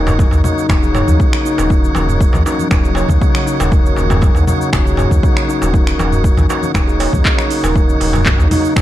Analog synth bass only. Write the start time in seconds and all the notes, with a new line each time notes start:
Already playing: D#1
0.32 D#2
0.70 D#1
1.08 D#2
1.58 D#1
1.95 D#1
2.34 D#2
2.71 D#1
3.09 D#2
3.60 D#1
3.98 D#1
4.36 D#2
4.73 D#1
5.11 D#2
5.62 D#1
5.99 D#1
6.37 D#2
6.75 D#1
7.13 D#2
7.63 D#1
8.00 D#1
8.39 D#2
8.76 D#1